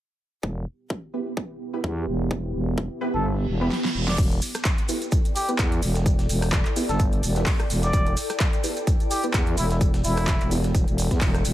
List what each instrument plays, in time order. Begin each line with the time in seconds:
0.43 fm bass E1, ambient pad B3 E4 G4, kick
0.90 kick
1.14 synth stab B3 E4 G4 B4
1.37 kick
1.73 synth stab B3 E4 G4 B4
1.84 fm bass E2, kick
2.07 fm bass E1
2.31 kick
2.54 fm bass E1
2.78 kick
3.01 synth stab B3 E4 G4 B4
3.14 fm bass G1, muted trumpet A4
3.25 reverse cymbal
3.48 fm bass E1
3.61 synth stab B3 E4 G4 B4
3.71 snare
3.85 snare
3.95 fm bass E1
4.08 muted trumpet D5, snare
4.18 fm bass E1, ambient pad E4, kick, closed hi-hat, crash, tambourine, maracas
4.31 ambient pad A4, closed hi-hat, maracas
4.41 ambient pad G5, open hi-hat, tambourine, maracas
4.54 cross-stick, closed hi-hat, maracas
4.65 ambient pad D5, kick, snare, clap, closed hi-hat, tambourine, maracas
4.78 closed hi-hat, maracas
4.89 synth stab B3 E4 G4 B4, open hi-hat, tambourine, maracas
5.02 closed hi-hat, maracas
5.12 kick, closed hi-hat, tambourine, maracas
5.25 closed hi-hat, maracas
5.36 muted trumpet G4, open hi-hat, tambourine, maracas
5.48 synth stab B3 E4 G4 B4, closed hi-hat, maracas
5.59 fm bass E2, kick, snare, clap, closed hi-hat, tambourine, maracas
5.72 closed hi-hat, maracas
5.82 fm bass E1, open hi-hat, tambourine, maracas
5.95 snare, closed hi-hat, maracas
6.06 kick, closed hi-hat, tambourine, maracas
6.19 snare, closed hi-hat, maracas
6.29 fm bass E1, open hi-hat, tambourine, maracas
6.42 cross-stick, closed hi-hat, open hi-hat, maracas
6.52 kick, snare, clap, closed hi-hat, tambourine, maracas
6.65 clap, closed hi-hat, maracas
6.76 synth stab B3 E4 G4 B4, open hi-hat, tambourine, maracas
6.89 fm bass G1, muted trumpet A4, snare, closed hi-hat, maracas
6.99 kick, closed hi-hat, tambourine, maracas
7.12 closed hi-hat, maracas
7.23 fm bass E1, open hi-hat, tambourine, maracas
7.35 synth stab B3 E4 G4 B4, snare, closed hi-hat, maracas
7.46 kick, snare, clap, closed hi-hat, open hi-hat, maracas
7.59 cross-stick, closed hi-hat, maracas
7.70 fm bass E1, open hi-hat, tambourine, maracas
7.83 muted trumpet D5, snare, closed hi-hat, maracas
7.93 kick, closed hi-hat, tambourine, maracas
8.06 closed hi-hat, maracas
8.17 open hi-hat, tambourine, maracas
8.30 cross-stick, closed hi-hat, maracas
8.40 kick, snare, clap, closed hi-hat, tambourine, maracas
8.53 closed hi-hat, maracas
8.64 synth stab B3 E4 G4 B4, open hi-hat, tambourine, maracas
8.77 closed hi-hat, maracas
8.87 kick, closed hi-hat, tambourine, maracas
9.00 closed hi-hat, maracas
9.11 muted trumpet G4, open hi-hat, tambourine, maracas
9.23 synth stab B3 E4 G4 B4, closed hi-hat, maracas
9.34 fm bass E2, kick, snare, clap, closed hi-hat, tambourine, maracas
9.46 closed hi-hat, maracas
9.57 fm bass E1, muted trumpet E4, open hi-hat, tambourine, maracas
9.70 muted trumpet E4, snare, closed hi-hat, maracas
9.81 kick, closed hi-hat, tambourine, maracas
9.94 snare, closed hi-hat, maracas
10.04 fm bass E1, muted trumpet E4, open hi-hat, tambourine, maracas
10.17 cross-stick, closed hi-hat, open hi-hat, maracas
10.27 kick, snare, clap, tambourine, maracas
10.40 fm bass E1, clap, closed hi-hat, maracas
10.51 synth stab B3 E4 G4 B4, open hi-hat, tambourine, maracas
10.64 snare, closed hi-hat, maracas
10.75 kick, closed hi-hat, tambourine, maracas
10.88 fm bass E1, closed hi-hat, maracas
10.98 open hi-hat, tambourine, maracas
11.11 fm bass E2, synth stab B3 E4 G4 B4, kick, snare, closed hi-hat, maracas
11.21 fm bass E1, kick, snare, clap, closed hi-hat, open hi-hat, maracas
11.34 cross-stick, closed hi-hat, maracas
11.45 fm bass E1, open hi-hat, tambourine, maracas